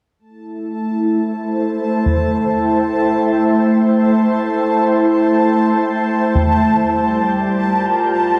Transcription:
0.19 A3 A5
0.29 E4
1.06 C5
2.06 G5, mid tom
6.35 mid tom
6.77 G3
7.33 A#4
7.51 F4

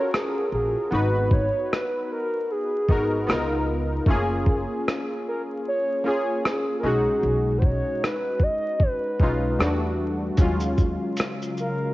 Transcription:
Already playing: C#4 F4 F#4 A4 A#4 C#5
0.14 G#4, cross-stick
0.52 A#1 G#4
0.91 G#1 B3 D#4 F#4 B4
1.31 C#5, kick
1.72 B4, cross-stick
2.12 A#4
2.51 G#4
2.88 G#1 B3 D#4 F#4 A#4, kick
3.27 C#2 B3 D#4 F4 A#4, cross-stick
4.06 F#1 A3 C#4 F4, kick
4.10 A#3 G#4
4.46 kick
4.88 cross-stick
5.28 A#4
5.68 C#5
6.04 A#3 C#4 F4 G#4 C#5
6.45 G#4, cross-stick
6.80 B1 G#3 A#4
6.84 C#4 D#4 F#4 G#4
7.23 B1
7.58 C5, kick
7.65 C#5
8.04 B4, cross-stick
8.40 D#5, kick
8.80 B4, kick
9.20 B1 G#3 C#4 D#4 F4, kick
9.59 E2 G3 A3 D4 F#4, cross-stick
10.37 D#2 C#3 F#3 G#3 C#4 F5, kick, closed hi-hat, shaker
10.41 F4
10.60 shaker
10.78 kick, shaker
11.17 cross-stick, closed hi-hat, shaker
11.42 shaker
11.57 A#4, shaker

